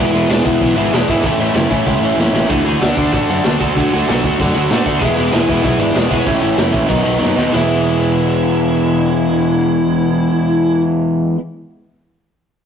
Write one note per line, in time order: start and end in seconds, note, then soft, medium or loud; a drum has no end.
0.00 0.14 E3 loud
0.00 0.13 G#3 loud
0.00 0.12 B3 loud
0.00 0.12 E4 loud
0.12 0.25 E1 medium
0.12 0.29 E3 medium
0.12 0.28 G#3 medium
0.12 0.29 B3 medium
0.12 0.30 E4 loud
0.12 crash medium
0.29 0.40 E1 loud
0.29 0.46 E3 loud
0.29 0.45 G#3 loud
0.29 0.44 B3 loud
0.29 0.44 D4 medium
0.29 0.44 E4 loud
0.29 0.44 D5 medium
0.29 snare loud
0.29 crash medium
0.45 0.57 E1 loud
0.45 0.60 E3 medium
0.45 0.60 G#3 medium
0.45 0.61 B3 loud
0.45 0.62 E4 loud
0.45 kick loud
0.45 crash medium
0.61 0.72 B1 medium
0.61 0.76 E3 medium
0.61 0.76 G#3 medium
0.61 0.76 B3 medium
0.61 0.75 E4 medium
0.61 kick loud
0.61 crash loud
0.76 0.88 G#1 loud
0.76 0.91 E3 medium
0.76 0.92 G#3 medium
0.76 0.92 B3 loud
0.76 0.93 E4 loud
0.76 crash medium
0.92 1.03 E1 loud
0.92 1.10 E3 medium
0.92 1.10 G#3 loud
0.92 1.09 B3 loud
0.92 1.08 D4 medium
0.92 1.09 E4 medium
0.92 1.07 D5 medium
0.92 snare loud
0.92 crash medium
1.08 1.19 G#1 loud
1.08 1.24 E3 medium
1.08 1.24 G#3 medium
1.08 1.24 B3 medium
1.08 1.24 E4 loud
1.08 kick medium
1.08 crash medium
1.22 1.35 A1 loud
1.22 1.41 A2 loud
1.22 1.40 E3 loud
1.22 1.40 A3 loud
1.22 1.52 A4 loud
1.22 kick loud
1.22 crash medium
1.27 1.39 C#4 loud
1.27 1.39 E4 loud
1.38 1.49 A1 loud
1.38 1.55 E3 medium
1.38 1.56 A3 loud
1.38 1.56 C#4 medium
1.38 1.56 E4 medium
1.38 crash medium
1.42 1.54 A2 medium
1.54 1.65 F#1 medium
1.54 1.72 A2 loud
1.54 1.71 E3 loud
1.54 1.72 A3 loud
1.54 1.70 C#4 loud
1.54 1.69 E4 loud
1.54 snare loud
1.54 crash medium
1.70 1.82 A1 medium
1.70 1.85 A2 medium
1.70 1.86 E3 medium
1.70 1.86 A3 medium
1.70 1.86 C#4 medium
1.70 1.87 E4 medium
1.70 kick medium
1.70 crash medium
1.86 1.97 C#2 medium
1.86 2.04 A2 medium
1.86 2.03 E3 medium
1.86 2.04 A3 medium
1.86 2.02 C#4 medium
1.86 2.02 E4 medium
1.86 kick loud
1.86 crash loud
2.00 2.12 A1 loud
2.00 2.19 C#4 loud
2.00 2.19 E4 loud
2.00 crash medium
2.04 2.17 A2 medium
2.04 2.17 E3 loud
2.04 2.18 A3 loud
2.16 2.28 E2 medium
2.16 2.34 A2 medium
2.16 2.33 E3 medium
2.16 2.33 A3 medium
2.16 2.32 C#4 medium
2.16 2.31 E4 medium
2.16 snare medium
2.32 2.44 A1 loud
2.32 2.49 A2 medium
2.32 2.48 E3 medium
2.32 2.48 A3 medium
2.32 2.48 C#4 medium
2.32 2.48 E4 medium
2.32 snare loud
2.48 2.61 D2 loud
2.48 2.66 D3 medium
2.48 2.65 E3 medium
2.48 2.65 A3 loud
2.48 2.65 D4 loud
2.48 2.65 E4 loud
2.48 2.64 F#4 loud
2.48 kick loud
2.48 crash medium
2.64 2.75 D2 medium
2.64 2.80 D3 medium
2.64 2.81 E3 medium
2.64 2.81 A3 medium
2.64 2.81 D4 medium
2.64 2.81 E4 medium
2.64 2.82 F#4 loud
2.64 crash medium
2.80 2.92 D2 loud
2.80 2.98 D3 loud
2.80 2.98 A3 loud
2.80 2.97 D4 loud
2.80 2.96 F#4 loud
2.80 3.11 D5 medium
2.80 snare loud
2.80 crash medium
2.97 3.08 D2 medium
2.97 3.11 D3 medium
2.97 3.12 A3 medium
2.97 3.12 D4 medium
2.97 3.13 F#4 medium
2.97 kick medium
2.97 crash medium
3.12 3.24 A1 medium
3.12 3.30 D3 medium
3.12 3.30 A3 medium
3.12 3.30 D4 medium
3.12 3.29 F#4 medium
3.12 3.57 D5 medium
3.12 kick loud
3.12 crash medium
3.28 3.40 F#2 loud
3.28 3.43 D3 loud
3.28 3.44 A3 medium
3.28 3.45 D4 loud
3.28 3.45 F#4 loud
3.28 crash medium
3.43 3.56 D2 loud
3.43 3.61 D3 medium
3.43 3.61 A3 medium
3.43 3.60 D4 medium
3.43 3.59 F#4 loud
3.43 snare loud
3.43 crash medium
3.60 3.71 D2 loud
3.60 3.76 D3 medium
3.60 4.82 F#3 medium
3.60 3.77 A3 medium
3.60 3.77 D4 medium
3.60 3.77 F#4 loud
3.60 kick medium
3.60 crash medium
3.76 3.87 D2 loud
3.76 3.94 D3 loud
3.76 3.94 A3 loud
3.76 3.93 D4 loud
3.76 3.92 F#4 loud
3.76 kick loud
3.76 crash medium
3.92 4.03 D2 medium
3.92 4.07 D3 medium
3.92 4.08 A3 medium
3.92 4.09 D4 medium
3.92 4.09 F#4 loud
3.92 crash medium
4.08 4.19 B1 medium
4.08 4.25 D3 loud
4.08 4.26 A3 loud
4.08 4.25 D4 loud
4.08 4.24 F#4 loud
4.08 snare loud
4.08 crash medium
4.23 4.35 D2 medium
4.23 4.39 D3 medium
4.23 4.39 A3 medium
4.23 4.41 D4 medium
4.23 4.40 F#4 medium
4.23 kick medium
4.23 crash medium
4.39 4.50 F#2 medium
4.39 4.55 D3 medium
4.39 4.54 A3 medium
4.39 4.54 D4 medium
4.39 4.53 F#4 medium
4.39 kick loud
4.39 crash loud
4.55 4.66 D2 loud
4.55 4.71 D3 medium
4.55 4.71 A3 loud
4.55 4.72 D4 loud
4.55 4.72 F#4 loud
4.55 crash medium
4.70 4.81 A2 loud
4.70 4.88 D3 medium
4.70 4.87 A3 medium
4.70 4.86 D4 medium
4.70 4.85 F#4 medium
4.70 snare loud
4.70 crash loud
4.85 4.97 D2 loud
4.85 5.02 A3 medium
4.85 5.01 D4 medium
4.85 5.01 F#4 loud
4.85 kick medium
4.85 crash medium
4.89 5.01 D3 medium
5.01 5.13 E1 loud
5.01 5.18 E3 loud
5.01 5.18 G#3 loud
5.01 5.17 B3 loud
5.01 5.16 E4 loud
5.01 5.34 G#4 loud
5.01 kick loud
5.01 crash medium
5.16 5.29 E1 loud
5.16 5.31 E3 medium
5.16 5.32 G#3 medium
5.16 5.32 B3 medium
5.16 5.32 E4 medium
5.16 crash medium
5.32 5.45 E1 loud
5.32 5.50 E3 loud
5.32 5.49 G#3 loud
5.32 5.48 B3 loud
5.32 5.48 E4 loud
5.32 snare loud
5.32 crash loud
5.48 5.60 E1 medium
5.48 5.61 E3 medium
5.48 5.62 G#3 medium
5.48 5.63 B3 loud
5.48 5.63 E4 loud
5.48 kick medium
5.48 crash medium
5.63 5.75 B1 loud
5.63 5.81 E3 medium
5.63 5.80 G#3 medium
5.63 5.79 B3 medium
5.63 5.79 E4 medium
5.63 kick loud
5.63 crash loud
5.78 5.90 G#1 loud
5.78 5.94 E3 medium
5.78 5.94 G#3 loud
5.78 5.95 B3 loud
5.78 6.12 D4 loud
5.78 5.95 E4 loud
5.78 6.08 D5 medium
5.78 crash medium
5.95 6.07 E1 medium
5.95 6.10 E3 medium
5.95 6.10 G#3 medium
5.95 6.09 B3 loud
5.95 6.09 E4 medium
5.95 snare loud
5.95 crash loud
6.10 6.22 E1 loud
6.10 6.25 E3 medium
6.10 6.26 G#3 medium
6.10 6.26 B3 medium
6.10 6.42 C#4 medium
6.10 6.26 E4 medium
6.10 6.41 C#5 medium
6.10 kick medium
6.10 crash medium
6.26 6.38 A1 loud
6.26 6.43 A2 loud
6.26 6.42 E3 loud
6.26 6.42 A3 loud
6.26 6.41 C#4 loud
6.26 6.40 E4 loud
6.26 kick loud
6.26 crash medium
6.42 6.54 A1 medium
6.42 6.56 A2 medium
6.42 6.56 E3 medium
6.42 6.57 A3 medium
6.42 6.58 C#4 medium
6.42 6.58 E4 loud
6.42 crash medium
6.57 6.70 F#1 medium
6.57 6.72 A2 medium
6.57 6.72 E3 medium
6.57 6.72 A3 loud
6.57 6.70 C#4 loud
6.57 6.70 E4 loud
6.57 snare loud
6.57 crash medium
6.71 6.85 A#1 loud
6.71 6.87 A2 medium
6.71 6.88 E3 medium
6.71 6.88 A3 medium
6.71 6.88 C#4 medium
6.71 6.88 E4 medium
6.71 kick medium
6.71 crash medium
6.88 7.01 B1 medium
6.88 7.04 B2 medium
6.88 7.04 D#3 medium
6.88 7.03 F#3 loud
6.88 7.03 B3 loud
6.88 7.02 D#4 medium
6.88 kick loud
6.88 crash medium
7.03 7.18 B1 loud
7.03 7.18 B2 loud
7.03 7.18 D#3 medium
7.03 7.19 F#3 loud
7.03 7.19 B3 loud
7.03 7.19 D#4 loud
7.03 crash medium
7.19 7.33 F#2 medium
7.19 7.38 B2 medium
7.19 7.37 D#3 medium
7.19 7.36 F#3 medium
7.19 7.36 B3 medium
7.19 7.35 D#4 loud
7.19 snare medium
7.36 7.49 D#2 loud
7.36 7.53 B2 medium
7.36 7.51 D#3 medium
7.36 7.52 F#3 medium
7.36 7.52 B3 medium
7.36 7.52 D#4 loud
7.36 snare medium
7.52 11.35 E1 loud
7.52 11.36 E3 loud
7.52 11.38 G#3 loud
7.52 11.39 B3 loud
7.52 11.40 E4 loud
7.52 snare loud